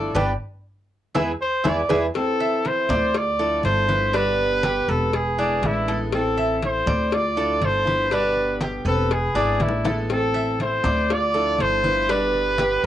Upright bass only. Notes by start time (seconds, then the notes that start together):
Already playing: G1
0.15 G1
1.15 E2
1.65 E2
1.90 E2
2.89 D2
3.64 G1
4.88 E1
5.62 A1
6.86 D2
7.61 G1
8.85 E1
9.35 G#1
9.60 A1
10.84 D2
11.59 G1